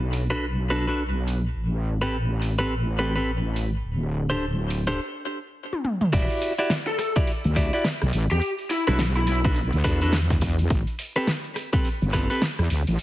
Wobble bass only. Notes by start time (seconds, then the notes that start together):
Already playing: B1
1.56 A1
3.85 D1
6.13 E1
7.45 D2
8.02 B1
8.14 A1
8.31 E2
8.88 B1
9.73 D2
9.85 E2
10.70 A1
12.02 G1
12.59 E2
12.71 D2
12.88 A1